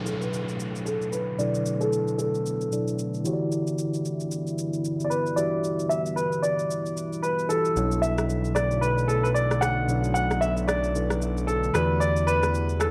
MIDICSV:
0, 0, Header, 1, 7, 480
1, 0, Start_track
1, 0, Key_signature, 2, "minor"
1, 0, Tempo, 530973
1, 1259, Time_signature, 4, 2, 24, 8
1, 11669, End_track
2, 0, Start_track
2, 0, Title_t, "Grand piano"
2, 0, Program_c, 0, 0
2, 49, Note_on_c, 0, 69, 85
2, 189, Note_on_c, 0, 71, 87
2, 198, Note_off_c, 0, 69, 0
2, 770, Note_on_c, 0, 69, 85
2, 792, Note_off_c, 0, 71, 0
2, 1010, Note_on_c, 0, 71, 84
2, 1022, Note_off_c, 0, 69, 0
2, 1251, Note_on_c, 0, 74, 97
2, 1262, Note_off_c, 0, 71, 0
2, 1631, Note_on_c, 0, 69, 94
2, 1646, Note_off_c, 0, 74, 0
2, 1951, Note_off_c, 0, 69, 0
2, 1970, Note_on_c, 0, 69, 71
2, 2898, Note_off_c, 0, 69, 0
2, 4561, Note_on_c, 0, 74, 62
2, 4611, Note_on_c, 0, 71, 81
2, 4616, Note_off_c, 0, 74, 0
2, 4849, Note_on_c, 0, 74, 91
2, 4862, Note_off_c, 0, 71, 0
2, 5329, Note_on_c, 0, 76, 89
2, 5349, Note_off_c, 0, 74, 0
2, 5569, Note_on_c, 0, 71, 84
2, 5582, Note_off_c, 0, 76, 0
2, 5797, Note_off_c, 0, 71, 0
2, 5808, Note_on_c, 0, 74, 92
2, 6498, Note_off_c, 0, 74, 0
2, 6530, Note_on_c, 0, 71, 85
2, 6757, Note_off_c, 0, 71, 0
2, 6769, Note_on_c, 0, 69, 86
2, 7248, Note_on_c, 0, 76, 96
2, 7269, Note_off_c, 0, 69, 0
2, 7728, Note_on_c, 0, 74, 92
2, 7748, Note_off_c, 0, 76, 0
2, 7956, Note_off_c, 0, 74, 0
2, 7968, Note_on_c, 0, 71, 89
2, 8206, Note_on_c, 0, 69, 90
2, 8221, Note_off_c, 0, 71, 0
2, 8346, Note_on_c, 0, 71, 84
2, 8356, Note_off_c, 0, 69, 0
2, 8391, Note_off_c, 0, 71, 0
2, 8447, Note_on_c, 0, 74, 93
2, 8676, Note_off_c, 0, 74, 0
2, 8688, Note_on_c, 0, 78, 103
2, 9154, Note_off_c, 0, 78, 0
2, 9167, Note_on_c, 0, 78, 99
2, 9408, Note_on_c, 0, 76, 98
2, 9421, Note_off_c, 0, 78, 0
2, 9650, Note_on_c, 0, 74, 99
2, 9661, Note_off_c, 0, 76, 0
2, 10369, Note_on_c, 0, 69, 86
2, 10396, Note_off_c, 0, 74, 0
2, 10597, Note_off_c, 0, 69, 0
2, 10610, Note_on_c, 0, 71, 90
2, 10850, Note_on_c, 0, 74, 95
2, 10862, Note_off_c, 0, 71, 0
2, 11090, Note_on_c, 0, 71, 103
2, 11102, Note_off_c, 0, 74, 0
2, 11570, Note_on_c, 0, 69, 81
2, 11589, Note_off_c, 0, 71, 0
2, 11616, Note_off_c, 0, 69, 0
2, 11669, End_track
3, 0, Start_track
3, 0, Title_t, "Tine electric piano"
3, 0, Program_c, 1, 4
3, 0, Control_c, 1, 64, 127
3, 0, Note_on_c, 1, 47, 63
3, 0, Note_on_c, 1, 54, 55
3, 0, Note_on_c, 1, 62, 57
3, 0, Note_on_c, 1, 64, 56
3, 0, Note_on_c, 1, 69, 56
3, 0, Note_on_c, 1, 73, 70
3, 1216, Note_off_c, 1, 47, 0
3, 1219, Note_off_c, 1, 54, 0
3, 1222, Note_off_c, 1, 62, 0
3, 1224, Note_off_c, 1, 64, 0
3, 1227, Note_off_c, 1, 69, 0
3, 1230, Note_off_c, 1, 73, 0
3, 1247, Note_on_c, 1, 47, 64
3, 1252, Note_on_c, 1, 54, 56
3, 1257, Note_on_c, 1, 62, 56
3, 1263, Note_on_c, 1, 64, 57
3, 1268, Note_on_c, 1, 69, 57
3, 1274, Note_on_c, 1, 71, 68
3, 2429, Note_off_c, 1, 47, 0
3, 2432, Note_off_c, 1, 54, 0
3, 2434, Note_off_c, 1, 62, 0
3, 2437, Note_off_c, 1, 64, 0
3, 2440, Note_off_c, 1, 69, 0
3, 2443, Note_off_c, 1, 71, 0
3, 2453, Note_on_c, 1, 47, 49
3, 2455, Note_on_c, 1, 54, 45
3, 2458, Note_on_c, 1, 62, 42
3, 2461, Note_on_c, 1, 64, 46
3, 2463, Note_on_c, 1, 69, 44
3, 2466, Note_on_c, 1, 74, 52
3, 2923, Note_off_c, 1, 64, 0
3, 2928, Note_on_c, 1, 52, 78
3, 2934, Note_on_c, 1, 64, 72
3, 2936, Note_off_c, 1, 47, 0
3, 2937, Note_off_c, 1, 54, 0
3, 2939, Note_off_c, 1, 62, 0
3, 2941, Note_off_c, 1, 69, 0
3, 2941, Note_on_c, 1, 66, 71
3, 2943, Note_off_c, 1, 74, 0
3, 2948, Note_on_c, 1, 67, 74
3, 2952, Control_c, 1, 64, 0
3, 2955, Note_on_c, 1, 73, 68
3, 3013, Note_on_c, 1, 74, 87
3, 3014, Note_off_c, 1, 73, 0
3, 3094, Control_c, 1, 64, 127
3, 4817, Note_off_c, 1, 52, 0
3, 4820, Note_off_c, 1, 64, 0
3, 4824, Note_off_c, 1, 66, 0
3, 4827, Note_off_c, 1, 67, 0
3, 4847, Note_on_c, 1, 52, 64
3, 4855, Note_on_c, 1, 64, 60
3, 4860, Note_off_c, 1, 74, 0
3, 4861, Note_on_c, 1, 66, 62
3, 4868, Note_on_c, 1, 67, 61
3, 4875, Note_on_c, 1, 76, 70
3, 6737, Note_off_c, 1, 52, 0
3, 6741, Note_off_c, 1, 64, 0
3, 6744, Note_off_c, 1, 66, 0
3, 6747, Note_off_c, 1, 67, 0
3, 6751, Note_off_c, 1, 76, 0
3, 6774, Note_on_c, 1, 52, 50
3, 6776, Note_on_c, 1, 64, 45
3, 6780, Note_on_c, 1, 66, 45
3, 6784, Note_on_c, 1, 67, 45
3, 6787, Note_on_c, 1, 69, 52
3, 7007, Note_on_c, 1, 47, 61
3, 7013, Note_off_c, 1, 64, 0
3, 7013, Note_on_c, 1, 54, 57
3, 7017, Note_off_c, 1, 52, 0
3, 7018, Note_off_c, 1, 69, 0
3, 7018, Note_on_c, 1, 61, 46
3, 7020, Note_off_c, 1, 66, 0
3, 7022, Note_off_c, 1, 67, 0
3, 7024, Note_on_c, 1, 64, 57
3, 7029, Note_on_c, 1, 69, 56
3, 7032, Control_c, 1, 64, 0
3, 7035, Note_on_c, 1, 73, 68
3, 7076, Note_on_c, 1, 62, 57
3, 7085, Note_off_c, 1, 61, 0
3, 7169, Control_c, 1, 64, 127
3, 8897, Note_off_c, 1, 47, 0
3, 8900, Note_off_c, 1, 54, 0
3, 8905, Note_off_c, 1, 64, 0
3, 8908, Note_off_c, 1, 69, 0
3, 8911, Note_off_c, 1, 73, 0
3, 8926, Note_on_c, 1, 47, 63
3, 8927, Note_off_c, 1, 62, 0
3, 8932, Note_on_c, 1, 54, 55
3, 8937, Note_on_c, 1, 62, 59
3, 8943, Note_on_c, 1, 64, 57
3, 8948, Note_on_c, 1, 69, 57
3, 8953, Note_on_c, 1, 74, 71
3, 9873, Note_off_c, 1, 47, 0
3, 9876, Note_off_c, 1, 54, 0
3, 9879, Note_off_c, 1, 62, 0
3, 9882, Note_off_c, 1, 64, 0
3, 9885, Note_off_c, 1, 69, 0
3, 9887, Note_off_c, 1, 74, 0
3, 9894, Note_on_c, 1, 47, 49
3, 9897, Note_on_c, 1, 54, 43
3, 9900, Note_on_c, 1, 62, 43
3, 9902, Note_on_c, 1, 64, 42
3, 9905, Note_on_c, 1, 69, 44
3, 9908, Note_on_c, 1, 71, 53
3, 10601, Note_off_c, 1, 64, 0
3, 10605, Note_on_c, 1, 52, 68
3, 10612, Note_on_c, 1, 64, 63
3, 10617, Note_off_c, 1, 47, 0
3, 10618, Note_off_c, 1, 54, 0
3, 10620, Note_off_c, 1, 62, 0
3, 10620, Note_on_c, 1, 66, 58
3, 10622, Note_off_c, 1, 69, 0
3, 10623, Note_off_c, 1, 71, 0
3, 10627, Note_on_c, 1, 67, 59
3, 10632, Control_c, 1, 64, 0
3, 10633, Note_on_c, 1, 74, 73
3, 10814, Control_c, 1, 64, 127
3, 11669, Note_off_c, 1, 52, 0
3, 11669, Note_off_c, 1, 64, 0
3, 11669, Note_off_c, 1, 66, 0
3, 11669, Note_off_c, 1, 67, 0
3, 11669, Note_off_c, 1, 74, 0
3, 11669, End_track
4, 0, Start_track
4, 0, Title_t, "Ambient pad"
4, 0, Program_c, 2, 92
4, 0, Note_on_c, 2, 50, 76
4, 0, Note_on_c, 2, 57, 72
4, 0, Note_on_c, 2, 64, 85
4, 0, Note_on_c, 2, 73, 73
4, 1240, Note_off_c, 2, 73, 0
4, 1259, Note_on_c, 2, 59, 71
4, 2904, Note_off_c, 2, 57, 0
4, 2922, Note_off_c, 2, 59, 0
4, 2939, Note_on_c, 2, 55, 74
4, 2940, Note_on_c, 2, 59, 73
4, 6983, Note_off_c, 2, 55, 0
4, 6984, Note_off_c, 2, 50, 0
4, 6984, Note_off_c, 2, 59, 0
4, 7020, Note_on_c, 2, 50, 78
4, 7021, Note_on_c, 2, 57, 72
4, 7021, Note_on_c, 2, 62, 71
4, 10584, Note_off_c, 2, 57, 0
4, 10584, Note_off_c, 2, 62, 0
4, 10620, Note_on_c, 2, 55, 78
4, 10621, Note_on_c, 2, 59, 71
4, 11669, Note_off_c, 2, 50, 0
4, 11669, Note_off_c, 2, 55, 0
4, 11669, Note_off_c, 2, 59, 0
4, 11669, Note_off_c, 2, 64, 0
4, 11669, End_track
5, 0, Start_track
5, 0, Title_t, "Analog synth bass"
5, 0, Program_c, 3, 38
5, 7019, Note_on_c, 3, 35, 81
5, 10583, Note_off_c, 3, 35, 0
5, 10620, Note_on_c, 3, 40, 82
5, 11669, Note_off_c, 3, 40, 0
5, 11669, End_track
6, 0, Start_track
6, 0, Title_t, "Downlifter"
6, 0, Program_c, 4, 103
6, 0, Note_on_c, 4, 60, 83
6, 3179, Note_off_c, 4, 60, 0
6, 11669, End_track
7, 0, Start_track
7, 0, Title_t, "Drums"
7, 56, Note_on_c, 9, 82, 85
7, 146, Note_off_c, 9, 82, 0
7, 196, Note_on_c, 9, 82, 47
7, 286, Note_off_c, 9, 82, 0
7, 300, Note_on_c, 9, 82, 81
7, 391, Note_off_c, 9, 82, 0
7, 438, Note_on_c, 9, 82, 51
7, 528, Note_off_c, 9, 82, 0
7, 539, Note_on_c, 9, 82, 75
7, 629, Note_off_c, 9, 82, 0
7, 680, Note_on_c, 9, 82, 50
7, 770, Note_off_c, 9, 82, 0
7, 779, Note_on_c, 9, 82, 71
7, 869, Note_off_c, 9, 82, 0
7, 917, Note_on_c, 9, 82, 39
7, 1007, Note_off_c, 9, 82, 0
7, 1016, Note_on_c, 9, 82, 102
7, 1106, Note_off_c, 9, 82, 0
7, 1258, Note_on_c, 9, 82, 76
7, 1349, Note_off_c, 9, 82, 0
7, 1397, Note_on_c, 9, 82, 58
7, 1487, Note_off_c, 9, 82, 0
7, 1498, Note_on_c, 9, 82, 84
7, 1589, Note_off_c, 9, 82, 0
7, 1636, Note_on_c, 9, 82, 55
7, 1726, Note_off_c, 9, 82, 0
7, 1740, Note_on_c, 9, 82, 64
7, 1831, Note_off_c, 9, 82, 0
7, 1875, Note_on_c, 9, 82, 45
7, 1965, Note_off_c, 9, 82, 0
7, 1977, Note_on_c, 9, 82, 85
7, 2067, Note_off_c, 9, 82, 0
7, 2118, Note_on_c, 9, 82, 46
7, 2208, Note_off_c, 9, 82, 0
7, 2222, Note_on_c, 9, 82, 81
7, 2312, Note_off_c, 9, 82, 0
7, 2359, Note_on_c, 9, 82, 53
7, 2450, Note_off_c, 9, 82, 0
7, 2461, Note_on_c, 9, 82, 77
7, 2552, Note_off_c, 9, 82, 0
7, 2601, Note_on_c, 9, 82, 54
7, 2692, Note_off_c, 9, 82, 0
7, 2701, Note_on_c, 9, 82, 66
7, 2791, Note_off_c, 9, 82, 0
7, 2839, Note_on_c, 9, 82, 39
7, 2929, Note_off_c, 9, 82, 0
7, 2938, Note_on_c, 9, 82, 95
7, 3029, Note_off_c, 9, 82, 0
7, 3181, Note_on_c, 9, 82, 73
7, 3271, Note_off_c, 9, 82, 0
7, 3319, Note_on_c, 9, 82, 57
7, 3409, Note_off_c, 9, 82, 0
7, 3422, Note_on_c, 9, 82, 78
7, 3512, Note_off_c, 9, 82, 0
7, 3559, Note_on_c, 9, 82, 55
7, 3649, Note_off_c, 9, 82, 0
7, 3663, Note_on_c, 9, 82, 63
7, 3753, Note_off_c, 9, 82, 0
7, 3797, Note_on_c, 9, 82, 46
7, 3888, Note_off_c, 9, 82, 0
7, 3899, Note_on_c, 9, 82, 83
7, 3990, Note_off_c, 9, 82, 0
7, 4040, Note_on_c, 9, 82, 47
7, 4130, Note_off_c, 9, 82, 0
7, 4144, Note_on_c, 9, 82, 80
7, 4234, Note_off_c, 9, 82, 0
7, 4281, Note_on_c, 9, 82, 50
7, 4371, Note_off_c, 9, 82, 0
7, 4382, Note_on_c, 9, 82, 73
7, 4473, Note_off_c, 9, 82, 0
7, 4523, Note_on_c, 9, 82, 53
7, 4613, Note_off_c, 9, 82, 0
7, 4621, Note_on_c, 9, 82, 69
7, 4711, Note_off_c, 9, 82, 0
7, 4760, Note_on_c, 9, 82, 39
7, 4850, Note_off_c, 9, 82, 0
7, 4859, Note_on_c, 9, 82, 99
7, 4949, Note_off_c, 9, 82, 0
7, 5101, Note_on_c, 9, 82, 76
7, 5191, Note_off_c, 9, 82, 0
7, 5239, Note_on_c, 9, 82, 57
7, 5330, Note_off_c, 9, 82, 0
7, 5341, Note_on_c, 9, 82, 85
7, 5431, Note_off_c, 9, 82, 0
7, 5478, Note_on_c, 9, 82, 55
7, 5569, Note_off_c, 9, 82, 0
7, 5582, Note_on_c, 9, 82, 64
7, 5673, Note_off_c, 9, 82, 0
7, 5717, Note_on_c, 9, 82, 45
7, 5807, Note_off_c, 9, 82, 0
7, 5818, Note_on_c, 9, 82, 81
7, 5909, Note_off_c, 9, 82, 0
7, 5958, Note_on_c, 9, 82, 47
7, 6048, Note_off_c, 9, 82, 0
7, 6063, Note_on_c, 9, 82, 80
7, 6153, Note_off_c, 9, 82, 0
7, 6199, Note_on_c, 9, 82, 51
7, 6290, Note_off_c, 9, 82, 0
7, 6301, Note_on_c, 9, 82, 78
7, 6391, Note_off_c, 9, 82, 0
7, 6442, Note_on_c, 9, 82, 53
7, 6532, Note_off_c, 9, 82, 0
7, 6540, Note_on_c, 9, 82, 66
7, 6631, Note_off_c, 9, 82, 0
7, 6678, Note_on_c, 9, 82, 39
7, 6768, Note_off_c, 9, 82, 0
7, 6778, Note_on_c, 9, 82, 98
7, 6868, Note_off_c, 9, 82, 0
7, 6916, Note_on_c, 9, 82, 56
7, 7006, Note_off_c, 9, 82, 0
7, 7019, Note_on_c, 9, 82, 77
7, 7109, Note_off_c, 9, 82, 0
7, 7156, Note_on_c, 9, 82, 61
7, 7246, Note_off_c, 9, 82, 0
7, 7259, Note_on_c, 9, 82, 83
7, 7349, Note_off_c, 9, 82, 0
7, 7395, Note_on_c, 9, 82, 55
7, 7397, Note_on_c, 9, 37, 83
7, 7486, Note_off_c, 9, 82, 0
7, 7487, Note_off_c, 9, 37, 0
7, 7500, Note_on_c, 9, 82, 61
7, 7590, Note_off_c, 9, 82, 0
7, 7634, Note_on_c, 9, 82, 45
7, 7724, Note_off_c, 9, 82, 0
7, 7736, Note_on_c, 9, 82, 86
7, 7738, Note_on_c, 9, 37, 95
7, 7827, Note_off_c, 9, 82, 0
7, 7828, Note_off_c, 9, 37, 0
7, 7877, Note_on_c, 9, 82, 46
7, 7967, Note_off_c, 9, 82, 0
7, 7981, Note_on_c, 9, 82, 83
7, 8072, Note_off_c, 9, 82, 0
7, 8119, Note_on_c, 9, 82, 49
7, 8209, Note_off_c, 9, 82, 0
7, 8219, Note_on_c, 9, 82, 75
7, 8310, Note_off_c, 9, 82, 0
7, 8361, Note_on_c, 9, 82, 56
7, 8451, Note_off_c, 9, 82, 0
7, 8460, Note_on_c, 9, 82, 68
7, 8550, Note_off_c, 9, 82, 0
7, 8598, Note_on_c, 9, 37, 82
7, 8598, Note_on_c, 9, 82, 39
7, 8689, Note_off_c, 9, 37, 0
7, 8689, Note_off_c, 9, 82, 0
7, 8698, Note_on_c, 9, 82, 96
7, 8700, Note_on_c, 9, 37, 95
7, 8789, Note_off_c, 9, 82, 0
7, 8790, Note_off_c, 9, 37, 0
7, 8940, Note_on_c, 9, 82, 79
7, 9030, Note_off_c, 9, 82, 0
7, 9077, Note_on_c, 9, 82, 58
7, 9168, Note_off_c, 9, 82, 0
7, 9180, Note_on_c, 9, 82, 82
7, 9270, Note_off_c, 9, 82, 0
7, 9317, Note_on_c, 9, 82, 56
7, 9319, Note_on_c, 9, 37, 82
7, 9407, Note_off_c, 9, 82, 0
7, 9409, Note_off_c, 9, 37, 0
7, 9421, Note_on_c, 9, 82, 63
7, 9511, Note_off_c, 9, 82, 0
7, 9555, Note_on_c, 9, 82, 46
7, 9645, Note_off_c, 9, 82, 0
7, 9657, Note_on_c, 9, 82, 87
7, 9659, Note_on_c, 9, 37, 97
7, 9748, Note_off_c, 9, 82, 0
7, 9749, Note_off_c, 9, 37, 0
7, 9798, Note_on_c, 9, 82, 46
7, 9888, Note_off_c, 9, 82, 0
7, 9902, Note_on_c, 9, 82, 79
7, 9993, Note_off_c, 9, 82, 0
7, 10037, Note_on_c, 9, 37, 86
7, 10039, Note_on_c, 9, 82, 52
7, 10127, Note_off_c, 9, 37, 0
7, 10130, Note_off_c, 9, 82, 0
7, 10140, Note_on_c, 9, 82, 73
7, 10231, Note_off_c, 9, 82, 0
7, 10281, Note_on_c, 9, 82, 53
7, 10372, Note_off_c, 9, 82, 0
7, 10380, Note_on_c, 9, 82, 71
7, 10470, Note_off_c, 9, 82, 0
7, 10518, Note_on_c, 9, 82, 39
7, 10609, Note_off_c, 9, 82, 0
7, 10618, Note_on_c, 9, 82, 97
7, 10619, Note_on_c, 9, 37, 97
7, 10708, Note_off_c, 9, 82, 0
7, 10710, Note_off_c, 9, 37, 0
7, 10860, Note_on_c, 9, 82, 77
7, 10950, Note_off_c, 9, 82, 0
7, 10997, Note_on_c, 9, 82, 57
7, 11087, Note_off_c, 9, 82, 0
7, 11100, Note_on_c, 9, 82, 83
7, 11190, Note_off_c, 9, 82, 0
7, 11237, Note_on_c, 9, 82, 57
7, 11239, Note_on_c, 9, 37, 81
7, 11327, Note_off_c, 9, 82, 0
7, 11329, Note_off_c, 9, 37, 0
7, 11341, Note_on_c, 9, 82, 66
7, 11431, Note_off_c, 9, 82, 0
7, 11475, Note_on_c, 9, 82, 46
7, 11566, Note_off_c, 9, 82, 0
7, 11577, Note_on_c, 9, 82, 88
7, 11578, Note_on_c, 9, 37, 98
7, 11667, Note_off_c, 9, 82, 0
7, 11669, Note_off_c, 9, 37, 0
7, 11669, End_track
0, 0, End_of_file